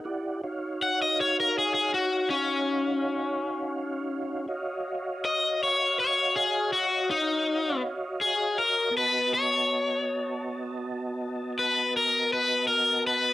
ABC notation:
X:1
M:12/8
L:1/16
Q:3/8=54
K:Ebm
V:1 name="Tonewheel organ"
[_F=G=d_g]2 [E_G_d=f]16- [EGdf]6 | [Gdef]24 | [=B,^F^d=a]24 |]
V:2 name="Overdriven electric guitar"
z4 g e d B A A G2 D12 | z4 e2 d2 d2 A2 G2 E4 z2 A2 B2 | =B2 d12 B2 _B2 =B2 _B2 =B2 |]